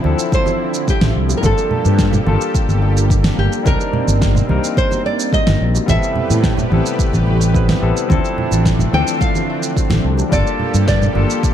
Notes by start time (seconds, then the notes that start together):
Already playing: D3 F3 C4 D4 E4 A4
0.02 D2 F3 C4 D4 E4, high conga
0.06 A4
0.19 shaker
0.32 C5, kick, shaker
0.46 high bongo, high conga, shaker
0.74 shaker
0.88 G4, kick, high bongo, shaker
1.01 A1, snare, high conga, shaker
1.16 C2
1.29 high bongo, shaker
1.37 G3 A#4
1.42 G1 A#3 D4 F4 G4 A4, kick, high conga, shaker
1.58 shaker
1.71 low conga
1.85 G2, high conga, shaker
1.99 kick, snare, shaker
2.13 low conga, shaker
2.24 G1 G3 A#3 D4 F4, high conga
2.28 A4
2.41 shaker
2.55 kick, shaker
2.68 G1, high conga, shaker
2.82 high bongo
2.97 shaker
3.10 kick, shaker
3.24 snare, high conga, shaker
3.38 G1 G4
3.53 shaker
3.63 C2 G3 C4 D4 D#4 A#4, kick, high conga, shaker
3.67 A#4
3.81 shaker
3.93 low conga
4.07 G1, high conga, shaker
4.22 kick, snare, shaker
4.35 low conga, shaker
4.47 C2 G3 A#3 C4 D#4, high conga
4.51 A#4
4.64 shaker
4.77 C5, kick, shaker
4.91 high bongo, high conga, shaker
5.06 D5
5.20 shaker
5.33 D#5, kick, high bongo, shaker
5.47 G1, snare, high conga, shaker
5.60 A#1
5.75 high bongo, shaker
5.86 A1 C3 G3 A3 B3 C4 E4 G4 B4 E5, kick, high conga, shaker
5.90 A4
6.03 shaker
6.16 low conga
6.30 A2, high conga, shaker
6.44 kick, snare, shaker
6.57 low conga, shaker
6.70 A1 G3 B3 C4 E4, high conga
6.74 A4
6.86 shaker
6.99 kick, shaker
7.13 A1, high conga, shaker
7.27 high bongo
7.42 shaker
7.54 G3 B3 C4 E4 B4, kick, shaker
7.69 snare, high conga, shaker
7.81 A1 G3 B3 C4 E4 A4
7.97 shaker
8.08 D2 D3 F3 A3 C4 D4 E4, kick, high conga, shaker
8.12 A4
8.25 shaker
8.38 low conga
8.51 A1, high conga, shaker
8.65 kick, snare, shaker
8.79 low conga, shaker
8.91 D2 E3 F3 C4 D4 G5, high conga
8.96 A4
9.08 shaker
9.21 F5, kick, shaker
9.35 high bongo, high conga, shaker
9.63 shaker
9.77 kick, high bongo, shaker
9.90 A1, snare, high conga, shaker
10.04 C2
10.17 high bongo, shaker
10.29 G1 F3 G3 A#3 D4 F4 G4 A4 D5, kick, high conga, shaker
10.34 A4
10.47 shaker
10.60 low conga
10.74 G2, high conga, shaker
10.88 D5, kick, snare, shaker
11.01 low conga, shaker
11.13 G1 G3 A#3 D4 F4, high conga
11.17 A4
11.30 shaker
11.43 kick, shaker